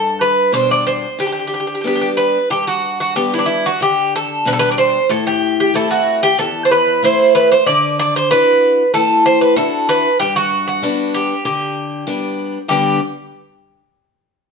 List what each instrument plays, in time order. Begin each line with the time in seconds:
Already playing: steel-string acoustic guitar G2, bouzouki A4
0.21 bouzouki B4
0.52 steel-string acoustic guitar B2 G3 D4, bouzouki C5
0.71 bouzouki D5
0.87 bouzouki C5
1.19 steel-string acoustic guitar D3, bouzouki G4
1.27 bouzouki G4
1.32 bouzouki G4
1.39 bouzouki G4
1.47 bouzouki G4
1.54 bouzouki G4
1.60 bouzouki G4
1.67 bouzouki G4
1.75 bouzouki G4
1.81 steel-string acoustic guitar G3 B3, bouzouki G4
1.85 steel-string acoustic guitar D4, bouzouki G4
1.95 bouzouki G4
2.01 bouzouki G4
2.17 bouzouki B4
2.50 steel-string acoustic guitar G2, bouzouki G4
2.67 bouzouki F#4
3.00 bouzouki F#4
3.16 steel-string acoustic guitar G3 B3 D4, bouzouki G4
3.34 bouzouki E4
3.39 bouzouki D4
3.46 bouzouki E4
3.66 bouzouki F#4
3.81 steel-string acoustic guitar D3, bouzouki G4
4.16 bouzouki A4
4.45 steel-string acoustic guitar B2 G3 D4, bouzouki B4
4.53 bouzouki A4
4.59 bouzouki B4
4.72 bouzouki D5
4.78 bouzouki C5
5.09 steel-string acoustic guitar A2, bouzouki A4
5.27 bouzouki G4
5.60 bouzouki G4
5.74 steel-string acoustic guitar A3 C4 E4, bouzouki A4
5.91 bouzouki F#4
6.23 bouzouki G4
6.39 steel-string acoustic guitar E2, bouzouki A4
6.65 bouzouki C5
6.71 bouzouki B4
7.03 steel-string acoustic guitar A3 C4 E4, bouzouki C5
7.35 bouzouki B4
7.52 bouzouki C5
7.66 steel-string acoustic guitar D3, bouzouki D5
7.99 bouzouki D5
8.16 bouzouki C5
8.31 steel-string acoustic guitar D4 E4 F#4, bouzouki B4
8.94 steel-string acoustic guitar A2, bouzouki A4
9.26 bouzouki C5
9.41 bouzouki B4
9.56 steel-string acoustic guitar D4 E4 F#4, bouzouki A4
9.89 bouzouki B4
10.20 steel-string acoustic guitar G2, bouzouki G4
10.36 bouzouki F#4
10.68 bouzouki F#4
10.82 steel-string acoustic guitar G3 B3 D4
11.14 bouzouki G4
11.45 steel-string acoustic guitar D3, bouzouki G4
12.07 steel-string acoustic guitar G3 B3 D4
12.68 steel-string acoustic guitar G2 D3 G3 B3 D4, bouzouki G4